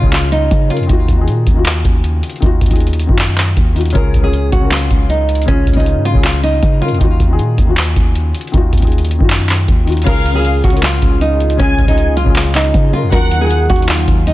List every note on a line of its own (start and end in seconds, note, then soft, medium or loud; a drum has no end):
0.00 0.49 C#2 loud
0.00 0.68 C#3 medium
0.00 0.02 C#4 medium
0.00 0.60 C#4 medium
0.00 0.04 F4 medium
0.00 0.06 G#4 loud
0.00 0.73 A#4 medium
0.00 kick medium
0.04 0.61 F4 medium
0.04 0.62 G#4 medium
0.13 0.29 F4 medium
0.13 clap loud
0.13 closed hi-hat medium
0.32 0.68 D#4 medium
0.32 closed hi-hat medium
0.51 0.81 C#3 loud
0.51 kick medium
0.51 closed hi-hat medium
0.68 0.85 C#3 medium
0.68 0.86 C#4 medium
0.68 0.86 F4 medium
0.68 0.87 F4 medium
0.68 closed hi-hat medium
0.73 0.88 A#4 medium
0.73 closed hi-hat soft
0.80 0.89 F2 medium
0.80 closed hi-hat soft
0.86 1.08 D#2 loud
0.86 1.12 D#3 medium
0.86 1.13 D#4 medium
0.86 1.14 F4 medium
0.86 kick loud
0.86 closed hi-hat medium
0.92 1.15 F#4 loud
1.08 1.29 D#2 loud
1.08 kick medium
1.08 closed hi-hat medium
1.16 1.50 D#3 medium
1.16 1.51 D#4 medium
1.16 1.52 F4 medium
1.21 1.52 G#4 medium
1.28 1.46 A#2 loud
1.28 closed hi-hat medium
1.47 1.83 D#2 loud
1.47 kick medium
1.47 closed hi-hat medium
1.54 2.20 D#3 medium
1.54 2.21 D#4 medium
1.54 2.22 F4 medium
1.59 2.23 F#4 medium
1.66 clap loud
1.66 closed hi-hat medium
1.85 2.22 D#2 loud
1.85 kick medium
1.85 closed hi-hat medium
2.04 closed hi-hat medium
2.23 closed hi-hat medium
2.30 closed hi-hat soft
2.36 closed hi-hat soft
2.40 2.61 D#2 loud
2.40 2.66 D#3 medium
2.40 2.67 D#4 medium
2.40 2.68 F4 medium
2.40 kick loud
2.40 closed hi-hat medium
2.46 2.69 F#4 loud
2.61 3.07 D#2 loud
2.61 kick medium
2.61 closed hi-hat medium
2.66 3.02 D#3 medium
2.66 3.03 D#4 medium
2.66 closed hi-hat medium
2.71 3.04 F4 medium
2.71 3.05 G#4 medium
2.71 kick medium
2.71 closed hi-hat medium
2.76 closed hi-hat medium
2.80 closed hi-hat soft
2.87 closed hi-hat medium
2.93 closed hi-hat medium
3.00 closed hi-hat medium
3.07 3.55 F#2 loud
3.07 3.66 D#3 medium
3.07 3.66 D#4 medium
3.07 3.67 F4 medium
3.07 kick loud
3.12 3.68 F#4 medium
3.19 clap loud
3.19 closed hi-hat medium
3.38 clap medium
3.38 closed hi-hat medium
3.57 3.94 D#2 loud
3.57 kick medium
3.57 closed hi-hat medium
3.73 3.91 D#3 medium
3.73 3.92 D#4 medium
3.73 3.93 F4 medium
3.73 closed hi-hat soft
3.73 open hi-hat soft
3.79 3.94 F#4 medium
3.79 closed hi-hat soft
3.86 closed hi-hat medium
3.90 4.18 C#3 loud
3.90 4.19 C#4 medium
3.90 closed hi-hat medium
3.95 4.13 C#2 loud
3.95 4.20 F4 medium
3.95 4.21 G#4 loud
3.95 4.22 A#4 medium
3.95 kick loud
3.95 closed hi-hat medium
4.14 4.51 C#2 loud
4.14 kick medium
4.14 closed hi-hat medium
4.21 4.55 C#3 medium
4.21 4.56 C#4 medium
4.21 4.57 F4 medium
4.21 4.51 G#4 medium
4.26 4.58 G#4 medium
4.33 closed hi-hat medium
4.52 4.89 C#2 loud
4.52 4.68 F#4 medium
4.52 kick medium
4.52 closed hi-hat medium
4.59 5.26 C#3 medium
4.59 5.27 C#4 medium
4.59 5.28 F4 medium
4.65 5.29 A#4 medium
4.71 5.07 F4 loud
4.71 clap loud
4.71 closed hi-hat medium
4.91 5.46 C#2 loud
4.91 kick medium
4.91 closed hi-hat medium
5.10 5.46 D#4 medium
5.10 closed hi-hat medium
5.29 closed hi-hat medium
5.35 closed hi-hat medium
5.42 5.71 C#3 medium
5.42 closed hi-hat soft
5.47 5.66 C#2 loud
5.47 5.72 C#4 medium
5.47 5.75 C#4 loud
5.47 5.73 F4 medium
5.47 5.74 G#4 loud
5.47 kick loud
5.47 closed hi-hat medium
5.67 5.97 C#2 loud
5.67 kick medium
5.67 closed hi-hat medium
5.73 6.08 C#3 medium
5.73 6.09 C#4 medium
5.73 6.04 D#4 medium
5.73 kick medium
5.73 closed hi-hat medium
5.77 6.10 F4 medium
5.77 6.11 G#4 medium
5.77 closed hi-hat soft
5.86 closed hi-hat medium
5.96 6.14 G#2 loud
6.05 6.21 F4 medium
6.05 closed hi-hat medium
6.12 6.61 C#2 loud
6.12 6.71 C#3 medium
6.12 6.72 C#4 medium
6.12 6.73 F4 medium
6.12 kick medium
6.17 6.73 G#4 medium
6.24 6.40 F4 medium
6.24 clap loud
6.24 closed hi-hat medium
6.44 6.79 D#4 medium
6.44 closed hi-hat medium
6.63 6.93 C#3 loud
6.63 kick medium
6.63 closed hi-hat medium
6.79 6.97 C#3 medium
6.79 6.98 C#4 medium
6.79 6.98 F4 medium
6.79 6.99 F4 medium
6.79 closed hi-hat medium
6.85 7.00 A#4 medium
6.85 closed hi-hat soft
6.91 7.00 F2 loud
6.91 closed hi-hat soft
6.98 7.19 D#2 loud
6.98 7.24 D#3 medium
6.98 7.25 D#4 medium
6.98 7.26 F4 medium
6.98 kick loud
6.98 closed hi-hat medium
7.03 7.27 F#4 loud
7.20 7.41 D#2 loud
7.20 kick medium
7.20 closed hi-hat medium
7.27 7.61 D#3 medium
7.27 7.62 D#4 medium
7.27 7.63 F4 medium
7.33 7.64 G#4 medium
7.39 7.57 A#2 loud
7.39 closed hi-hat medium
7.58 7.95 D#2 loud
7.58 kick medium
7.58 closed hi-hat medium
7.65 8.32 D#3 medium
7.65 8.33 D#4 medium
7.65 8.34 F4 medium
7.70 8.35 F#4 medium
7.77 clap loud
7.77 closed hi-hat medium
7.96 8.33 D#2 loud
7.96 kick medium
7.96 closed hi-hat medium
8.15 closed hi-hat medium
8.35 closed hi-hat medium
8.41 closed hi-hat soft
8.47 closed hi-hat soft
8.52 8.72 D#2 loud
8.52 8.77 D#3 loud
8.52 8.78 D#4 medium
8.52 8.79 F4 medium
8.52 kick loud
8.52 closed hi-hat medium
8.57 8.80 F#4 loud
8.73 9.19 D#2 loud
8.73 kick medium
8.73 closed hi-hat medium
8.78 9.14 D#3 medium
8.78 9.15 D#4 medium
8.78 closed hi-hat medium
8.82 9.15 F4 medium
8.82 9.16 G#4 medium
8.82 kick medium
8.82 closed hi-hat medium
8.87 closed hi-hat soft
8.92 closed hi-hat soft
8.98 closed hi-hat medium
9.05 closed hi-hat medium
9.11 closed hi-hat medium
9.19 9.66 F#2 loud
9.19 9.77 D#3 medium
9.19 9.78 D#4 medium
9.19 9.79 F4 medium
9.19 kick medium
9.24 9.80 F#4 medium
9.30 clap loud
9.30 closed hi-hat medium
9.49 clap medium
9.49 closed hi-hat medium
9.68 10.05 D#2 loud
9.68 kick medium
9.68 closed hi-hat medium
9.85 10.03 D#3 medium
9.85 10.03 D#4 medium
9.85 10.04 F4 medium
9.85 closed hi-hat soft
9.85 open hi-hat soft
9.90 10.05 F#4 medium
9.90 closed hi-hat soft
9.97 closed hi-hat medium
10.02 10.30 C#3 loud
10.02 10.31 C#4 medium
10.02 closed hi-hat medium
10.06 10.62 C#2 loud
10.06 13.09 C#3 medium
10.06 13.09 C#4 medium
10.06 13.09 F4 medium
10.06 10.32 F4 medium
10.06 13.09 G#4 medium
10.06 10.33 G#4 loud
10.06 10.34 A#4 loud
10.06 10.42 F5 loud
10.06 kick loud
10.06 closed hi-hat medium
10.06 crash loud
10.26 closed hi-hat medium
10.32 10.67 C#3 medium
10.32 10.68 C#4 medium
10.32 10.68 F4 medium
10.32 10.62 G#4 medium
10.38 10.69 G#4 medium
10.45 closed hi-hat medium
10.64 11.01 C#2 loud
10.64 10.80 F#4 medium
10.64 kick medium
10.64 closed hi-hat medium
10.70 11.38 C#3 medium
10.70 11.39 C#4 medium
10.70 closed hi-hat medium
10.74 11.40 F4 medium
10.74 11.40 A#4 medium
10.74 closed hi-hat medium
10.83 11.19 F4 medium
10.83 clap loud
10.83 closed hi-hat medium
11.02 11.57 C#2 loud
11.02 kick medium
11.02 closed hi-hat medium
11.21 11.57 D#4 medium
11.21 closed hi-hat medium
11.40 closed hi-hat soft
11.50 closed hi-hat medium
11.57 11.78 C#2 loud
11.57 11.83 C#3 medium
11.57 11.84 C#4 medium
11.57 11.86 C#4 loud
11.57 11.85 F4 medium
11.57 11.95 G#5 loud
11.57 kick loud
11.57 closed hi-hat medium
11.62 11.85 G#4 loud
11.79 11.88 C#2 loud
11.79 kick medium
11.79 closed hi-hat medium
11.85 12.25 C#2 loud
11.85 12.20 C#3 medium
11.85 12.20 C#4 medium
11.85 12.15 D#4 medium
11.85 12.21 F4 medium
11.85 kick medium
11.85 closed hi-hat medium
11.91 12.22 G#4 medium
11.98 closed hi-hat medium
12.17 12.33 F4 medium
12.17 closed hi-hat medium
12.23 12.72 C#2 loud
12.23 12.82 C#3 medium
12.23 12.83 C#4 medium
12.23 12.84 F4 medium
12.23 kick loud
12.29 12.85 G#4 medium
12.36 12.52 F4 medium
12.36 clap loud
12.36 closed hi-hat medium
12.55 12.91 D#4 medium
12.55 clap medium
12.55 closed hi-hat medium
12.65 closed hi-hat soft
12.74 13.04 C#3 loud
12.74 kick loud
12.74 closed hi-hat medium
12.91 13.08 C#3 medium
12.91 13.09 C#4 medium
12.91 13.09 F4 medium
12.91 13.10 F4 medium
12.91 open hi-hat soft
12.96 13.11 A#4 medium
13.03 13.12 F2 medium
13.09 13.67 D#2 loud
13.09 13.35 D#3 medium
13.09 14.34 D#3 medium
13.09 14.34 F#3 medium
13.09 13.36 D#4 loud
13.09 14.34 D#4 medium
13.09 13.37 F4 medium
13.09 13.39 A#4 loud
13.09 13.48 F#5 loud
13.09 kick loud
13.09 closed hi-hat medium
13.15 13.38 F#4 loud
13.31 closed hi-hat medium
13.39 13.73 D#3 medium
13.39 13.74 D#4 medium
13.39 13.75 F4 medium
13.39 13.68 G#4 medium
13.44 13.75 G#4 medium
13.51 closed hi-hat medium
13.70 14.06 D#2 loud
13.70 13.86 F#4 medium
13.70 kick loud
13.70 closed hi-hat medium
13.76 14.34 D#3 medium
13.76 14.34 D#4 medium
13.76 closed hi-hat medium
13.80 14.34 F#3 medium
13.80 14.34 F4 medium
13.80 closed hi-hat medium
13.89 14.25 F4 medium
13.89 clap loud
13.89 closed hi-hat medium
14.08 14.34 D#2 loud
14.08 kick medium
14.08 closed hi-hat medium
14.27 14.34 D#4 medium
14.27 closed hi-hat medium